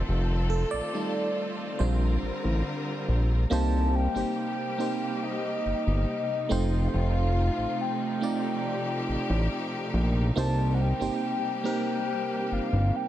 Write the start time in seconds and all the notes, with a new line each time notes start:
Already playing: D#3 A3 C4 F4 A4
0.09 F1
0.50 A4
0.71 A#1 D5
0.93 G3 A3 D#4
1.79 A#1 D3 G3 C4 D4 A#4 C5
2.23 A1
2.44 A1
3.08 A#1
3.50 C2 C3 G3 A#3 C4 D#4 G4 C5 F5 A5
3.95 G5
4.15 G1 A#3 C4 D#4 G4 C5
4.78 A#3 C4 D#4 G4 C5
5.24 D#5
5.65 G1
5.87 G1
6.49 F1 F3 A3 C4 D#4 F4 C5 G5
6.88 G5
6.94 F1 F5
7.58 A1
7.81 G5
8.21 A3 C4 D#4 F4 G4 D5
9.08 A1
9.30 A1
9.94 A#1
10.36 C2 G3 A#3 C4 D#4 G4 C5 A5
10.74 F#5
10.81 G5
10.99 G1 A#3 C4 D#4 G4 C5
11.64 A#3 C4 D#4 G4 A#4 C5 G5
12.51 G1 F5
12.73 G1
12.96 G5